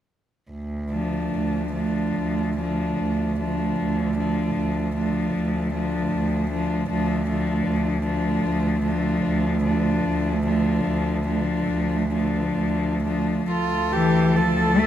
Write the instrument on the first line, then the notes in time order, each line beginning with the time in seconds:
cello
0.51 D2
0.92 F3 A3 D4
1.35 D2
1.73 F3 A3 D4
2.18 D2
2.59 F3 A3 D4
2.99 D2
3.39 F3 A3 D4
3.79 D2
4.18 F3 A3 D4
4.56 D2
4.96 F3 A3 D4
5.35 D2
5.73 F3 A3 D4
6.13 D2
6.51 F3 A3 D4
6.89 D2 F3 A3 D4
7.27 F3 A3 D4
7.67 D2
8.04 F3 A3 D4
8.45 D2
8.83 F3 A3 D4
9.25 D2
9.63 F3 A3 D4
10.06 D2
10.45 F3 A3 D4
10.85 D2
11.27 F3 A3 D4
11.68 D2
12.13 F3 A3 D4
12.57 D2
13.04 F3 A3 D4
13.50 D2 F4 A4
13.93 E3 G4
14.35 F3 A4
14.79 A3